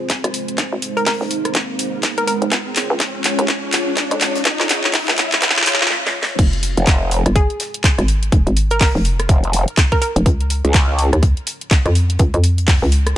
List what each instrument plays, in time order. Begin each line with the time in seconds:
Already playing: analog synth pad G#3 C4 F4 C5, riser
0.09 kick, snare, clap, closed hi-hat
0.24 fm bass G#1, cross-stick, closed hi-hat
0.34 closed hi-hat, open hi-hat
0.48 closed hi-hat
0.58 fm bass F1, analog synth pad D#4, kick, clap, closed hi-hat
0.73 fm bass G#1
0.82 closed hi-hat, open hi-hat
0.97 synth pluck A#4, closed hi-hat
1.06 synth pluck A#4, kick, snare, clap, closed hi-hat, open hi-hat
1.21 fm bass F1, snare
1.31 closed hi-hat, open hi-hat
1.45 cross-stick, closed hi-hat
1.55 fm bass F1, kick, clap, closed hi-hat
1.79 closed hi-hat, open hi-hat
2.03 kick, snare, clap, closed hi-hat
2.18 synth pluck A#4, closed hi-hat
2.27 synth pluck A#4, closed hi-hat, open hi-hat
2.42 fm bass F1, closed hi-hat
2.51 fm bass C#2, analog synth pad C#4 F4 C#5, kick, clap, closed hi-hat
2.76 clap, closed hi-hat, open hi-hat
2.90 fm bass C#2
3.00 kick, snare, clap, closed hi-hat
3.24 clap, closed hi-hat, open hi-hat
3.39 fm bass D#2, closed hi-hat
3.48 kick, clap, closed hi-hat
3.73 clap, closed hi-hat, open hi-hat
3.96 kick, snare, clap, closed hi-hat
4.11 fm bass F2, closed hi-hat
4.21 snare, clap, closed hi-hat, open hi-hat
4.35 snare, closed hi-hat
4.45 fm bass C#2, kick, snare, clap, closed hi-hat
4.60 fm bass F2, snare, clap, closed hi-hat
4.69 clap, closed hi-hat, open hi-hat
4.84 clap, closed hi-hat
4.93 kick, snare, clap, closed hi-hat, open hi-hat
5.08 fm bass C#2, snare, clap, closed hi-hat
5.18 kick, clap, closed hi-hat, open hi-hat
5.32 clap, closed hi-hat
5.42 fm bass C#2, kick, clap, closed hi-hat
5.49 clap
5.56 clap
5.61 clap
5.66 clap, closed hi-hat, open hi-hat
5.73 clap
5.81 clap
5.85 clap
5.90 snare
6.07 snare
6.23 snare
6.39 fm bass F1, analog synth pad G#3 C4 F4 C5, kick, closed hi-hat, crash
6.53 closed hi-hat
6.63 closed hi-hat, open hi-hat
6.77 wobble bass F1, closed hi-hat
6.87 kick, snare, clap, closed hi-hat
7.11 closed hi-hat, open hi-hat
7.26 fm bass G1, cross-stick, closed hi-hat
7.36 synth pluck G#4, kick, closed hi-hat
7.50 closed hi-hat
7.60 snare, closed hi-hat, open hi-hat
7.74 closed hi-hat
7.84 kick, snare, clap, closed hi-hat
7.98 fm bass G#1, cross-stick, closed hi-hat
8.08 closed hi-hat, open hi-hat
8.23 closed hi-hat
8.32 fm bass F1, analog synth pad D#4, kick, closed hi-hat
8.47 fm bass G#1, closed hi-hat
8.56 closed hi-hat, open hi-hat
8.71 synth pluck A#4, closed hi-hat
8.81 synth pluck A#4, kick, snare, clap, closed hi-hat, open hi-hat
8.95 fm bass F1, snare
9.05 closed hi-hat, open hi-hat
9.20 cross-stick, closed hi-hat
9.29 wobble bass F1, kick, closed hi-hat
9.44 closed hi-hat
9.53 closed hi-hat, open hi-hat
9.68 closed hi-hat
9.77 kick, snare, clap, closed hi-hat
9.92 synth pluck A#4, kick, closed hi-hat
10.02 synth pluck A#4, closed hi-hat, open hi-hat
10.16 fm bass F1, closed hi-hat
10.26 fm bass C#2, analog synth pad G#3 C#4 F4 C#5, kick, closed hi-hat
10.41 closed hi-hat
10.50 closed hi-hat, open hi-hat
10.65 wobble bass C#2, closed hi-hat
10.74 kick, snare, clap, closed hi-hat
10.99 closed hi-hat, open hi-hat
11.13 fm bass D#2, cross-stick, closed hi-hat
11.23 kick, closed hi-hat
11.37 closed hi-hat
11.47 closed hi-hat, open hi-hat
11.61 closed hi-hat
11.71 kick, snare, clap, closed hi-hat
11.86 fm bass F2, cross-stick, closed hi-hat
11.95 closed hi-hat, open hi-hat
12.10 closed hi-hat
12.19 fm bass C#2, kick, closed hi-hat
12.34 fm bass F2, closed hi-hat
12.44 closed hi-hat, open hi-hat
12.58 closed hi-hat
12.67 kick, snare, clap, closed hi-hat, open hi-hat
12.82 fm bass C#2, snare
12.92 closed hi-hat, open hi-hat
13.07 cross-stick, closed hi-hat